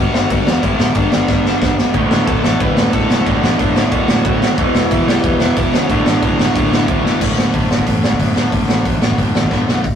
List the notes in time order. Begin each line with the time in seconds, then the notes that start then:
Already playing: G2 D3 G3 F#4 F#5
0.00 D3 G3
0.13 G1 G2 D3 G3 F#4 F#5, snare
0.30 G1 G2 D3 G3, kick, crash
0.46 E2 G2 D3 G3, snare
0.63 G1 G2 D3 G3 E4 E5, kick, crash
0.79 D1 G2 D3 G3 E4 E5, snare
0.95 G1 G2 D3 G3 D4 D5, kick, crash
1.12 G1 G2 D3 G3 D4 D5, snare
1.28 G1 G2 D3 G3 D4 D5, kick, snare
1.44 G1 G2 D3 G3, snare
1.61 G1 G2 D3 G3, kick, snare
1.78 G2 D3 G3, snare
1.94 D1 D2 A2 D3, kick, crash
2.11 D1 D2 A2 D3, snare
2.27 D1 D2 A2 D3 A4 A5, kick, crash
2.44 A1 D2 A2 D3 A4 A5, snare
2.60 D1 D2 A2 D3 B4 B5, kick, crash
2.77 D1 D2 A2 D3, snare
2.93 D1 D2 A2 D3 A4 A5, kick, crash
3.10 B1 D2 A2 D3, snare
3.25 D1 D2 A2 D3 F#4 F#5, kick, crash
3.42 A1 D2 A2 D3, snare
3.51 F#4 F#5
3.59 D1 D2 A2 D3 D4 D5, kick, crash
3.75 D1 D2 A2 D3, snare
3.84 E4 E5
3.91 D1 D2 A2 D3 F#4 F#5, kick, crash
4.08 D1 D2 A2 D3, snare
4.25 D1 D2 A2 D3, kick, crash
4.42 D2 A2 D3, snare
4.58 E1 E2 B2 E3, kick, crash
4.74 E1 E2 B2 E3, snare
4.91 E1 E2 B2 E3 E4 E5, kick, crash
5.07 B1 E2 B2 E3 G4 G5, snare
5.24 E1 E2 B2 E3, kick, crash
5.39 E1 E2 B2 E3 E4 E5, snare
5.56 E1 E2 B2 E3 E4 E5, kick, crash
5.72 D2 E2 B2 E3 C#4 C#5, snare
5.89 D1 D2 A2 D3 D4 D5, kick, crash
6.06 A1 D2 A2 D3, snare
6.23 D1 D2 A2 D3, kick, crash
6.39 D1 D2 A2 D3, snare
6.55 D1 D2 A2 D3, kick, crash
6.72 D1 D2 A2 D3, snare
6.88 D1 D2 A2 D3, kick, crash
7.04 D2 A2 D3, snare
7.21 D1 D2 A2 D3, kick, crash
7.38 snare
7.53 D1 D2 A2 D3, kick, open hi-hat
7.70 D1 D2 A2 D3, snare
7.78 kick
7.86 A1 D2 A2 D3, kick, open hi-hat
8.03 D1, snare
8.11 kick
8.19 D1 D2 A2 D3, kick, open hi-hat
8.36 D1 D2 A2 D3, snare
8.52 D1 D2 A2 D3, kick, open hi-hat
8.69 A1, snare
8.85 A1 D2 A2 D3, kick, open hi-hat
9.01 A1 D2 A2 D3, snare
9.10 kick
9.18 D1 D2 A2 D3, kick, open hi-hat
9.34 A1, snare
9.43 kick
9.51 D1 D2 A2 D3, kick, snare
9.67 B1 D2 A2 D3, snare
9.84 D1, kick, open hi-hat